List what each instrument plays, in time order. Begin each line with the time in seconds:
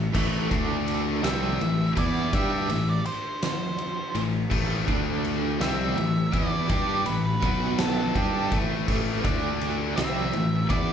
Already playing: picked electric bass A1
0.14 picked electric bass A1, distorted electric guitar A2 E3 A3, kick, crash
0.49 picked electric bass D2, distorted electric guitar D3 A3 D4, kick, ride
0.88 ride
1.22 picked electric bass C2, distorted electric guitar C3 G3 C4, lead electric guitar E5, snare, ride
1.60 picked electric bass A1, distorted electric guitar A2 E3, ride
1.96 picked electric bass E2, distorted electric guitar E3 B3 E4, lead electric guitar D5, kick, ride
2.32 picked electric bass G2, distorted electric guitar G3 D4 G4, lead electric guitar E5, kick, ride
2.69 picked electric bass A1, distorted electric guitar A2 E3, ride
2.90 lead electric guitar D5
3.06 lead electric guitar C5, ride
3.43 lead electric guitar C5, snare, ride
3.78 ride
4.15 picked electric bass A1, distorted electric guitar A2 E3, ride
4.50 picked electric bass A1, distorted electric guitar A2 E3 A3, kick, crash
4.87 picked electric bass D2, distorted electric guitar D3 A3 D4, kick, ride
5.25 ride
5.60 picked electric bass C2, distorted electric guitar C3 G3 C4, lead electric guitar E5, snare, ride
5.96 picked electric bass A1, distorted electric guitar A2 E3, ride
6.33 picked electric bass E2, distorted electric guitar E3 B3 E4, lead electric guitar D5, kick, ride
6.69 picked electric bass G2, distorted electric guitar G3 D4 G4, kick, ride
7.06 picked electric bass A1, distorted electric guitar A2 E3, lead electric guitar B4, ride
7.42 picked electric bass B1, distorted electric guitar B2 F#3 B3, kick, ride
7.79 lead electric guitar A4, snare, ride
8.15 picked electric bass G2, distorted electric guitar G3 D4 G4, kick, ride
8.52 picked electric bass A1, distorted electric guitar A2 E3 A3, kick, ride
8.87 picked electric bass A1, distorted electric guitar A2 E3 A3, kick, crash
9.24 picked electric bass D2, distorted electric guitar D3 A3 D4, kick, ride
9.61 ride
9.96 picked electric bass C2, distorted electric guitar C3 G3 C4, lead electric guitar E5, snare, ride
10.33 picked electric bass A1, distorted electric guitar A2 E3, ride
10.69 picked electric bass E2, distorted electric guitar E3 B3 E4, lead electric guitar D5, kick, ride